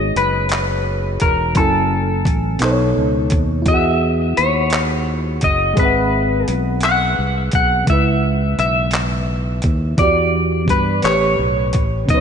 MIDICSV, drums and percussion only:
0, 0, Header, 1, 2, 480
1, 0, Start_track
1, 0, Key_signature, 5, "minor"
1, 0, Tempo, 701754
1, 1067, Time_signature, 6, 3, 24, 8
1, 8348, End_track
2, 0, Start_track
2, 0, Title_t, "Drums"
2, 112, Note_on_c, 9, 42, 70
2, 181, Note_off_c, 9, 42, 0
2, 336, Note_on_c, 9, 42, 66
2, 358, Note_on_c, 9, 39, 107
2, 404, Note_off_c, 9, 42, 0
2, 426, Note_off_c, 9, 39, 0
2, 820, Note_on_c, 9, 42, 71
2, 832, Note_on_c, 9, 36, 82
2, 888, Note_off_c, 9, 42, 0
2, 901, Note_off_c, 9, 36, 0
2, 1060, Note_on_c, 9, 42, 72
2, 1064, Note_on_c, 9, 36, 111
2, 1128, Note_off_c, 9, 42, 0
2, 1133, Note_off_c, 9, 36, 0
2, 1541, Note_on_c, 9, 36, 92
2, 1550, Note_on_c, 9, 42, 65
2, 1610, Note_off_c, 9, 36, 0
2, 1619, Note_off_c, 9, 42, 0
2, 1773, Note_on_c, 9, 42, 64
2, 1794, Note_on_c, 9, 39, 110
2, 1841, Note_off_c, 9, 42, 0
2, 1863, Note_off_c, 9, 39, 0
2, 2257, Note_on_c, 9, 42, 73
2, 2271, Note_on_c, 9, 36, 83
2, 2326, Note_off_c, 9, 42, 0
2, 2339, Note_off_c, 9, 36, 0
2, 2501, Note_on_c, 9, 42, 72
2, 2503, Note_on_c, 9, 36, 112
2, 2569, Note_off_c, 9, 42, 0
2, 2572, Note_off_c, 9, 36, 0
2, 2991, Note_on_c, 9, 42, 73
2, 3059, Note_off_c, 9, 42, 0
2, 3215, Note_on_c, 9, 42, 61
2, 3237, Note_on_c, 9, 39, 114
2, 3284, Note_off_c, 9, 42, 0
2, 3305, Note_off_c, 9, 39, 0
2, 3702, Note_on_c, 9, 42, 69
2, 3713, Note_on_c, 9, 36, 85
2, 3770, Note_off_c, 9, 42, 0
2, 3781, Note_off_c, 9, 36, 0
2, 3946, Note_on_c, 9, 36, 116
2, 3946, Note_on_c, 9, 42, 71
2, 4014, Note_off_c, 9, 36, 0
2, 4015, Note_off_c, 9, 42, 0
2, 4431, Note_on_c, 9, 42, 69
2, 4499, Note_off_c, 9, 42, 0
2, 4655, Note_on_c, 9, 42, 68
2, 4677, Note_on_c, 9, 39, 100
2, 4724, Note_off_c, 9, 42, 0
2, 4745, Note_off_c, 9, 39, 0
2, 5141, Note_on_c, 9, 42, 71
2, 5153, Note_on_c, 9, 36, 89
2, 5209, Note_off_c, 9, 42, 0
2, 5221, Note_off_c, 9, 36, 0
2, 5385, Note_on_c, 9, 36, 107
2, 5385, Note_on_c, 9, 42, 68
2, 5453, Note_off_c, 9, 36, 0
2, 5453, Note_off_c, 9, 42, 0
2, 5873, Note_on_c, 9, 42, 66
2, 5942, Note_off_c, 9, 42, 0
2, 6094, Note_on_c, 9, 42, 62
2, 6116, Note_on_c, 9, 39, 104
2, 6162, Note_off_c, 9, 42, 0
2, 6184, Note_off_c, 9, 39, 0
2, 6580, Note_on_c, 9, 42, 68
2, 6593, Note_on_c, 9, 36, 91
2, 6648, Note_off_c, 9, 42, 0
2, 6661, Note_off_c, 9, 36, 0
2, 6825, Note_on_c, 9, 42, 70
2, 6826, Note_on_c, 9, 36, 119
2, 6894, Note_off_c, 9, 42, 0
2, 6895, Note_off_c, 9, 36, 0
2, 7303, Note_on_c, 9, 36, 96
2, 7314, Note_on_c, 9, 42, 68
2, 7372, Note_off_c, 9, 36, 0
2, 7383, Note_off_c, 9, 42, 0
2, 7541, Note_on_c, 9, 42, 67
2, 7562, Note_on_c, 9, 39, 105
2, 7609, Note_off_c, 9, 42, 0
2, 7631, Note_off_c, 9, 39, 0
2, 8023, Note_on_c, 9, 42, 71
2, 8034, Note_on_c, 9, 36, 90
2, 8091, Note_off_c, 9, 42, 0
2, 8102, Note_off_c, 9, 36, 0
2, 8267, Note_on_c, 9, 36, 110
2, 8269, Note_on_c, 9, 42, 68
2, 8335, Note_off_c, 9, 36, 0
2, 8337, Note_off_c, 9, 42, 0
2, 8348, End_track
0, 0, End_of_file